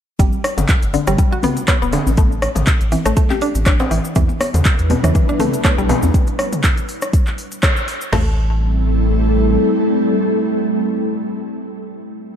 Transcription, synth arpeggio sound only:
0.20 0.32 G3 medium
0.94 1.06 D3 medium
1.08 1.13 G3 medium
1.19 1.31 G3 medium
1.32 1.38 F#4 medium
1.44 1.56 B3 medium
1.69 1.81 B3 medium
1.82 1.93 B3 medium
1.93 2.05 D3 medium
2.18 2.30 A3 medium
2.92 3.04 E3 medium
3.06 3.12 A3 medium
3.17 3.29 A3 medium
3.30 3.36 G4 medium
3.42 3.54 D4 medium
3.67 3.79 D4 medium
3.80 3.91 C4 medium
3.91 4.03 E3 medium
4.16 4.28 E3 medium
4.91 5.03 B2 medium
5.04 5.10 E3 medium
5.15 5.27 E3 medium
5.29 5.35 D4 medium
5.40 5.52 A3 medium
5.65 5.78 A3 medium
5.78 5.89 G3 medium
5.90 6.02 B2 medium
8.13 8.36 A3 loud

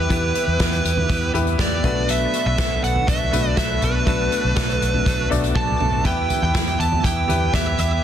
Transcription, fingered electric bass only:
0.10 0.31 E2 medium
0.47 0.58 E2 loud
0.60 0.80 E2 loud
0.85 1.05 E2 medium
1.10 1.30 E2 medium
1.34 1.55 E2 loud
1.59 1.79 E2 loud
1.84 2.25 B1 loud
2.46 2.56 B1 loud
2.59 2.79 B1 loud
2.83 3.03 B1 loud
3.08 3.28 B1 loud
3.33 3.53 B1 loud
3.57 3.78 B1 loud
3.82 4.03 B1 loud
4.07 4.27 B1 medium
4.44 4.55 B1 loud
4.81 5.02 B1 loud
5.06 5.27 B1 medium
5.31 5.51 B1 medium
5.56 5.76 B1 medium
5.80 6.01 B1 loud
6.05 6.25 E2 medium
6.42 6.53 E2 loud
6.55 6.75 E2 medium
6.79 7.00 E2 loud
7.04 7.25 E2 loud
7.29 7.49 E2 medium
7.54 7.74 E2 loud
7.78 7.99 E2 loud

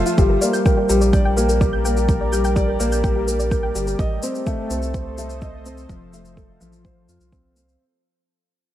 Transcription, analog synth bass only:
0.18 0.38 G1 loud
0.90 2.77 A#1 medium
2.80 3.72 A#1 medium
3.76 3.95 G1 medium
3.99 4.19 A1 loud
4.71 5.86 C2 medium
5.89 6.58 F1 medium
6.61 7.08 A1 medium
7.09 7.18 F2 medium
7.21 7.77 C2 medium

